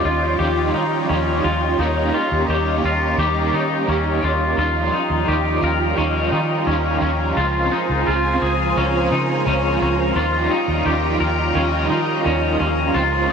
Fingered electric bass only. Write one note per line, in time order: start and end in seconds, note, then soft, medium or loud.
0.05 0.35 D#2 medium
0.39 0.70 D#2 loud
0.74 1.05 D#3 medium
1.09 1.40 D#2 medium
1.44 1.75 D#2 medium
1.78 2.09 D#2 loud
2.31 2.47 D#2 medium
2.48 2.79 D#2 medium
2.84 3.14 D#2 medium
3.18 3.49 D#2 loud
3.53 3.84 D#3 medium
3.88 4.19 D#2 medium
4.23 4.54 D#2 medium
4.57 4.88 D#2 loud
5.09 5.25 D#2 medium
5.28 5.59 D#2 medium
5.62 5.93 D#2 medium
5.97 6.28 D#2 medium
6.32 6.63 D#3 medium
6.66 6.98 D#2 medium
7.01 7.33 D#2 medium
7.36 7.67 C#2 medium
7.89 8.05 C#2 medium
8.07 8.38 C#2 medium
8.41 8.72 C#2 medium
8.77 9.07 C#2 loud
9.11 9.42 C#3 loud
9.46 9.77 C#2 loud
9.81 10.12 C#2 medium
10.15 10.47 D#2 loud
10.68 10.83 D#2 medium
10.85 11.16 D#2 medium
11.20 11.51 D#2 medium
11.55 11.86 D#2 medium
11.90 12.21 D#3 medium
12.25 12.56 D#2 medium
12.60 12.91 D#2 medium
12.94 13.26 C#2 medium